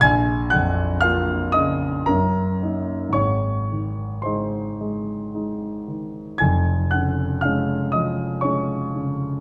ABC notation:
X:1
M:3/4
L:1/8
Q:1/4=57
K:Db
V:1 name="Grand piano"
[aa'] [gg'] [ff'] [ee'] [Bb]2 | [dd']2 [cc']3 z | [aa'] [gg'] [ff'] [ee'] [dd']2 |]
V:2 name="Grand piano" clef=bass
B,,, F,, [B,F] D, G,, [B,E] | [A,,,A,,] E, [A,E] A, [A,E] E, | [F,,,F,,] D, [A,D] F, [A,D] D, |]